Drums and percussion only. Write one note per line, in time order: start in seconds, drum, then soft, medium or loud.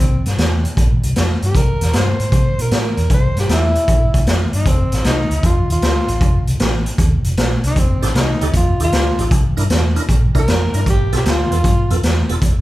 0.26 snare soft
0.26 closed hi-hat medium
0.38 snare loud
0.38 closed hi-hat medium
0.65 closed hi-hat medium
0.77 kick loud
0.77 closed hi-hat medium
1.03 closed hi-hat medium
1.16 snare medium
1.16 closed hi-hat medium
1.42 closed hi-hat medium
1.55 kick loud
1.55 closed hi-hat medium
1.81 snare soft
1.81 closed hi-hat medium
1.93 snare loud
1.93 closed hi-hat medium
2.20 closed hi-hat medium
2.32 kick loud
2.32 closed hi-hat medium
2.59 closed hi-hat medium
2.71 snare loud
2.71 closed hi-hat medium
2.97 closed hi-hat medium
3.10 kick loud
3.10 closed hi-hat medium
3.37 snare soft
3.37 closed hi-hat medium
3.49 snare loud
3.49 closed hi-hat medium
3.75 closed hi-hat medium
3.88 kick loud
3.88 closed hi-hat medium
4.14 kick medium
4.14 closed hi-hat medium
4.27 snare loud
4.27 closed hi-hat medium
4.53 closed hi-hat medium
4.65 kick loud
4.65 closed hi-hat medium
4.92 snare soft
4.92 closed hi-hat medium
5.04 snare loud
5.04 closed hi-hat medium
5.31 closed hi-hat medium
5.43 kick loud
5.43 closed hi-hat medium
5.70 closed hi-hat medium
5.82 snare loud
5.82 closed hi-hat medium
6.08 closed hi-hat medium
6.21 kick loud
6.21 closed hi-hat medium
6.47 closed hi-hat medium
6.59 snare loud
6.59 closed hi-hat medium
6.86 closed hi-hat medium
6.98 kick loud
6.98 closed hi-hat medium
7.24 closed hi-hat medium
7.37 snare loud
7.37 closed hi-hat medium
7.64 closed hi-hat medium
7.76 kick loud
7.76 closed hi-hat medium
8.02 snare soft
8.02 closed hi-hat medium
8.15 snare loud
8.15 closed hi-hat medium
8.41 closed hi-hat medium
8.53 kick loud
8.53 closed hi-hat medium
8.80 closed hi-hat medium
8.92 snare loud
8.92 closed hi-hat medium
9.18 closed hi-hat medium
9.31 kick loud
9.31 closed hi-hat medium
9.57 closed hi-hat medium
9.70 snare loud
9.70 closed hi-hat medium
9.96 closed hi-hat medium
10.09 kick loud
10.09 closed hi-hat medium
10.35 kick medium
10.35 closed hi-hat medium
10.48 snare loud
10.48 closed hi-hat medium
10.74 closed hi-hat medium
10.86 kick loud
10.86 closed hi-hat medium
11.12 snare soft
11.12 closed hi-hat medium
11.25 snare loud
11.25 closed hi-hat medium
11.52 closed hi-hat medium
11.64 kick loud
11.64 closed hi-hat medium
11.90 closed hi-hat medium
12.03 snare loud
12.03 closed hi-hat medium
12.29 closed hi-hat medium
12.42 kick loud
12.42 closed hi-hat medium